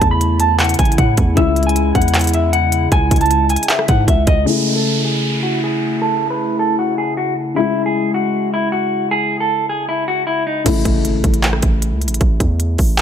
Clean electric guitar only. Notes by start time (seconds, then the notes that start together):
0.11 B5
0.40 A5
0.60 F#5
0.79 G#5
0.98 F#5
1.37 E5
1.67 G#5
1.95 F#5
2.34 E5
2.53 F#5
2.92 G#5
3.21 A5
3.50 G#5
3.69 E5
3.89 F#5
4.08 E5
4.27 D#5
4.46 G#4
4.76 A4
5.05 G#4
5.43 F#4
5.64 G#4
6.02 A4
6.30 B4
6.59 A4
6.79 F#4
6.98 G#4
7.17 F#4
7.56 E4
7.86 G#4
8.14 F#4
8.54 E4
8.72 F#4
9.11 G#4
9.40 A4
9.69 G#4
9.89 E4
10.08 F#4
10.27 E4
10.47 D#4